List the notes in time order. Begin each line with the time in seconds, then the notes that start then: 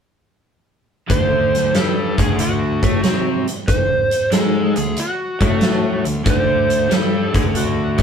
1.09 D2 D3 C5, kick, closed hi-hat
1.55 snare, closed hi-hat
1.74 G2 G3 A4, snare, closed hi-hat
2.18 D2 D3 G#4, kick, closed hi-hat
2.39 F#4, closed hi-hat
2.83 A2 A3, kick, closed hi-hat
3.03 C3 C4, snare, closed hi-hat
3.48 closed hi-hat
3.68 C5, kick, closed hi-hat
4.11 closed hi-hat
4.32 G#2 G#3 A4, snare, closed hi-hat
4.76 D2 D3 G#4, closed hi-hat
4.97 F#4, closed hi-hat
5.41 A2 A3, kick, closed hi-hat
5.61 snare, closed hi-hat
6.05 D2 D3, closed hi-hat
6.25 D2 D3, kick, closed hi-hat
6.30 C5
6.70 closed hi-hat
6.89 G2 G3, snare, closed hi-hat
6.93 A4
7.34 D2 D3 G#4, kick, closed hi-hat
7.55 F#4, closed hi-hat
7.98 A2 A3, kick, closed hi-hat